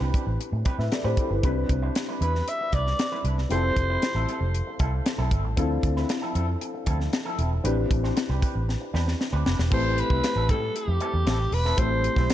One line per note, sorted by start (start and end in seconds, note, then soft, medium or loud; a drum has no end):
0.00 0.11 C2 medium
0.00 1.39 C4 medium
0.00 0.12 C4 soft
0.00 1.39 D4 medium
0.00 0.13 D4 soft
0.00 0.63 E4 medium
0.00 0.63 G4 medium
0.00 0.13 G4 medium
0.00 0.64 B4 medium
0.00 0.13 B4 medium
0.13 0.32 C4 medium
0.13 0.26 D4 medium
0.13 0.26 G4 medium
0.13 0.25 B4 medium
0.13 kick medium
0.13 closed hi-hat medium
0.27 0.37 A1 medium
0.27 muted clean electric guitar stroke soft
0.39 muted clean electric guitar stroke soft
0.39 closed hi-hat medium
0.52 0.62 A2 medium
0.52 muted clean electric guitar stroke soft
0.65 0.83 C4 medium
0.65 0.78 D4 medium
0.65 0.78 G4 medium
0.65 0.77 B4 medium
0.65 kick medium
0.65 closed hi-hat medium
0.78 0.88 A2 medium
0.78 0.91 B4 soft
0.78 0.91 E5 medium
0.78 muted clean electric guitar stroke soft
0.78 snare soft
0.91 1.04 A4 soft
0.91 1.04 D5 medium
0.91 muted clean electric guitar stroke soft
0.91 snare medium
0.91 closed hi-hat medium
1.04 1.14 A2 medium
1.04 1.16 C4 medium
1.04 1.17 D4 medium
1.04 1.17 G4 medium
1.04 1.18 B4 medium
1.04 1.17 C5 medium
1.17 1.32 C4 medium
1.17 1.30 D4 soft
1.17 1.29 E4 soft
1.17 1.30 G4 medium
1.17 1.30 A4 medium
1.17 1.29 B4 medium
1.17 kick medium
1.17 closed hi-hat medium
1.30 1.40 G1 medium
1.30 1.42 E4 soft
1.30 1.43 B4 medium
1.30 muted clean electric guitar stroke soft
1.42 1.63 C2 loud
1.42 1.61 G3 medium
1.42 3.46 C4 medium
1.42 3.46 D4 medium
1.42 1.56 D4 medium
1.42 3.47 E4 medium
1.42 1.56 E4 medium
1.42 3.47 G4 medium
1.42 1.55 B4 medium
1.42 3.47 B4 medium
1.42 kick loud
1.42 closed hi-hat medium
1.56 muted clean electric guitar stroke soft
1.69 1.89 C2 medium
1.69 muted clean electric guitar stroke soft
1.69 kick medium
1.69 closed hi-hat medium
1.82 1.94 G3 soft
1.82 1.95 D4 medium
1.82 1.95 E4 medium
1.82 1.96 C5 medium
1.95 muted clean electric guitar stroke soft
1.95 snare loud
1.95 closed hi-hat medium
2.08 2.20 G3 soft
2.08 2.20 D4 soft
2.08 2.21 E4 soft
2.08 2.21 B4 medium
2.21 2.40 E2 medium
2.21 2.39 G3 medium
2.21 2.34 D4 medium
2.21 2.34 E4 medium
2.21 2.33 B4 medium
2.21 2.50 B4 medium
2.21 closed hi-hat medium
2.34 muted clean electric guitar stroke soft
2.34 snare soft
2.47 2.76 E5 medium
2.47 muted clean electric guitar stroke soft
2.47 closed hi-hat medium
2.60 muted clean electric guitar stroke soft
2.72 2.92 C2 medium
2.72 2.91 G3 medium
2.72 2.86 D4 medium
2.72 2.85 E4 medium
2.72 2.85 B4 medium
2.72 3.25 D5 medium
2.72 kick medium
2.72 closed hi-hat medium
2.86 muted clean electric guitar stroke soft
2.86 snare soft
2.99 muted clean electric guitar stroke soft
2.99 snare loud
2.99 closed hi-hat medium
3.12 3.24 G3 medium
3.12 3.24 D4 medium
3.12 3.25 E4 medium
3.12 3.25 B4 medium
3.24 3.44 C2 medium
3.24 3.39 G3 medium
3.24 3.37 D4 medium
3.24 3.37 E4 medium
3.24 3.37 B4 medium
3.24 closed hi-hat medium
3.38 muted clean electric guitar stroke soft
3.38 snare soft
3.49 3.70 F1 medium
3.49 3.69 G3 medium
3.49 5.53 C4 medium
3.49 3.63 C4 medium
3.49 5.53 E4 medium
3.49 3.63 E4 medium
3.49 5.53 F4 soft
3.49 5.54 G4 soft
3.49 5.54 A4 medium
3.49 3.62 A4 medium
3.49 4.51 C5 loud
3.49 closed hi-hat medium
3.63 muted clean electric guitar stroke soft
3.76 3.96 F1 medium
3.76 muted clean electric guitar stroke soft
3.76 kick medium
3.76 closed hi-hat medium
3.89 4.01 G3 soft
3.89 4.02 C4 soft
3.89 4.02 E4 medium
3.89 4.03 B4 medium
4.02 muted clean electric guitar stroke soft
4.02 snare medium
4.02 closed hi-hat medium
4.15 4.25 A1 medium
4.15 4.27 G3 soft
4.15 4.27 C4 medium
4.15 4.28 E4 medium
4.15 4.28 A4 medium
4.28 4.46 G3 medium
4.28 4.41 C4 medium
4.28 4.40 E4 medium
4.28 4.40 A4 medium
4.28 closed hi-hat medium
4.41 4.60 F1 medium
4.41 muted clean electric guitar stroke soft
4.55 closed hi-hat medium
4.67 muted clean electric guitar stroke soft
4.79 4.99 C2 medium
4.79 4.98 G3 medium
4.79 4.92 C4 medium
4.79 4.92 E4 medium
4.79 4.91 A4 medium
4.79 kick medium
4.79 closed hi-hat medium
4.92 muted clean electric guitar stroke soft
5.05 muted clean electric guitar stroke soft
5.05 snare loud
5.05 closed hi-hat medium
5.18 5.28 B1 medium
5.18 5.30 G3 medium
5.18 5.30 C4 medium
5.18 5.31 E4 medium
5.18 5.31 A4 medium
5.31 5.44 G1 medium
5.31 5.46 G3 soft
5.31 5.44 C4 medium
5.31 5.44 E4 medium
5.31 5.43 A4 medium
5.31 kick medium
5.31 closed hi-hat medium
5.44 5.54 A1 medium
5.44 muted clean electric guitar stroke soft
5.57 5.77 D2 loud
5.57 5.75 F3 medium
5.57 7.60 C4 medium
5.57 5.70 C4 medium
5.57 7.60 D4 medium
5.57 7.61 E4 medium
5.57 5.70 E4 medium
5.57 7.61 F4 medium
5.57 5.69 A4 medium
5.57 7.61 A4 medium
5.57 kick loud
5.57 closed hi-hat medium
5.70 muted clean electric guitar stroke soft
5.83 6.03 D2 medium
5.83 muted clean electric guitar stroke soft
5.83 kick medium
5.83 closed hi-hat medium
5.96 6.08 F3 soft
5.96 6.08 C4 soft
5.96 6.08 E4 medium
5.96 6.10 B4 soft
5.96 snare soft
6.09 muted clean electric guitar stroke soft
6.09 snare loud
6.09 closed hi-hat medium
6.22 6.34 F3 medium
6.22 6.34 C4 soft
6.22 6.34 E4 medium
6.22 6.35 A4 medium
6.35 6.55 F2 medium
6.35 6.53 F3 medium
6.35 6.48 C4 medium
6.35 6.47 E4 medium
6.35 6.47 A4 medium
6.35 closed hi-hat medium
6.48 muted clean electric guitar stroke soft
6.61 muted clean electric guitar stroke soft
6.61 closed hi-hat medium
6.74 muted clean electric guitar stroke soft
6.86 7.06 D2 medium
6.86 7.05 F3 medium
6.86 6.99 C4 medium
6.86 6.99 E4 medium
6.86 6.98 A4 medium
6.86 kick medium
6.86 closed hi-hat medium
7.00 muted clean electric guitar stroke soft
7.00 snare soft
7.13 muted clean electric guitar stroke soft
7.13 snare loud
7.13 closed hi-hat medium
7.25 7.37 F3 medium
7.25 7.37 C4 medium
7.25 7.38 E4 medium
7.25 7.38 A4 medium
7.38 7.58 E1 medium
7.38 7.53 F3 soft
7.38 7.51 C4 medium
7.38 7.51 E4 soft
7.38 7.50 A4 medium
7.38 closed hi-hat medium
7.51 muted clean electric guitar stroke soft
7.64 7.84 A1 medium
7.64 9.67 C4 medium
7.64 7.82 C4 medium
7.64 9.67 D4 medium
7.64 7.77 D4 medium
7.64 9.68 E4 medium
7.64 7.76 G4 medium
7.64 9.68 G4 medium
7.64 7.76 B4 medium
7.64 9.68 B4 medium
7.64 closed hi-hat medium
7.77 muted clean electric guitar stroke soft
7.90 8.10 A1 medium
7.90 muted clean electric guitar stroke soft
7.90 kick medium
7.90 closed hi-hat medium
8.03 8.15 C4 soft
8.03 8.15 D4 soft
8.03 8.15 G4 medium
8.03 8.16 C5 medium
8.03 snare soft
8.16 muted clean electric guitar stroke soft
8.16 snare loud
8.16 closed hi-hat medium
8.29 8.39 C2 medium
8.29 8.41 C4 soft
8.29 8.41 D4 soft
8.29 8.41 G4 medium
8.29 8.42 B4 medium
8.42 8.60 C4 medium
8.42 8.55 D4 medium
8.42 8.54 G4 medium
8.42 8.54 B4 medium
8.42 kick medium
8.42 closed hi-hat medium
8.55 8.75 A1 medium
8.55 muted clean electric guitar stroke soft
8.68 muted clean electric guitar stroke soft
8.68 snare soft
8.81 muted clean electric guitar stroke soft
8.93 9.13 E2 medium
8.93 9.12 C4 medium
8.93 9.06 D4 medium
8.93 9.06 G4 medium
8.93 9.05 B4 medium
8.93 snare medium
9.07 muted clean electric guitar stroke soft
9.07 snare medium
9.19 muted clean electric guitar stroke soft
9.19 snare medium
9.32 9.42 D2 medium
9.32 9.44 C4 medium
9.32 9.44 D4 medium
9.32 9.44 G4 medium
9.32 9.45 B4 medium
9.45 9.55 F1 medium
9.45 9.59 C4 medium
9.45 9.58 D4 soft
9.45 9.57 G4 medium
9.45 9.57 B4 medium
9.45 snare medium
9.58 9.68 E1 medium
9.58 muted clean electric guitar stroke soft
9.58 snare medium
9.70 10.01 A1 medium
9.70 9.89 G3 medium
9.70 11.74 A3 medium
9.70 11.74 C4 soft
9.70 9.84 C4 medium
9.70 11.74 E4 soft
9.70 9.83 E4 medium
9.70 11.75 G4 medium
9.70 9.83 A4 medium
9.70 11.75 B4 medium
9.70 10.01 C5 loud
9.70 kick loud
9.70 crash medium
9.84 muted clean electric guitar stroke soft
9.97 10.53 B4 loud
9.97 muted clean electric guitar stroke soft
9.97 closed hi-hat medium
10.10 10.20 C2 medium
10.10 10.22 G3 soft
10.10 10.22 C4 medium
10.10 10.23 E4 medium
10.10 10.24 B4 medium
10.10 kick medium
10.23 muted clean electric guitar stroke soft
10.23 snare loud
10.23 closed hi-hat medium
10.36 10.51 A1 medium
10.36 10.48 G3 soft
10.36 10.48 C4 soft
10.36 10.49 E4 soft
10.36 10.49 A4 medium
10.49 10.69 A2 medium
10.49 10.67 G3 medium
10.49 10.62 C4 medium
10.49 10.61 E4 medium
10.49 10.61 A4 medium
10.49 10.78 A4 medium
10.49 kick medium
10.49 closed hi-hat medium
10.62 muted clean electric guitar stroke soft
10.75 11.55 G4 medium
10.75 muted clean electric guitar stroke soft
10.75 closed hi-hat medium
10.88 10.97 F2 medium
10.88 muted clean electric guitar stroke soft
11.00 11.19 G3 medium
11.00 11.14 C4 medium
11.00 11.13 E4 medium
11.00 11.13 A4 medium
11.00 closed hi-hat medium
11.14 11.23 E2 medium
11.14 muted clean electric guitar stroke medium
11.26 11.46 A1 medium
11.26 11.44 G3 medium
11.26 11.39 C4 medium
11.26 11.38 E4 medium
11.26 11.38 A4 medium
11.26 snare loud
11.26 closed hi-hat medium
11.39 muted clean electric guitar stroke soft
11.52 11.72 E1 medium
11.52 11.81 B4 medium
11.52 muted clean electric guitar stroke soft
11.52 open hi-hat medium
11.65 11.76 G3 soft
11.65 11.77 C4 medium
11.65 11.77 E4 medium
11.65 11.78 A4 medium
11.65 snare soft
11.77 12.07 A1 medium
11.77 11.96 G3 medium
11.77 12.34 A3 medium
11.77 12.34 C4 medium
11.77 11.91 C4 medium
11.77 12.34 E4 medium
11.77 11.90 E4 medium
11.77 12.34 G4 medium
11.77 11.89 A4 medium
11.77 12.34 C5 medium
11.77 12.31 C5 medium
11.77 kick loud
11.77 closed hi-hat medium
11.91 muted clean electric guitar stroke soft
12.04 muted clean electric guitar stroke soft
12.04 closed hi-hat medium
12.16 12.26 B1 medium
12.16 12.28 G3 soft
12.16 12.29 C4 medium
12.16 12.29 E4 medium
12.16 12.30 B4 medium
12.16 kick medium
12.16 snare soft
12.29 muted clean electric guitar stroke soft
12.29 snare loud
12.29 closed hi-hat medium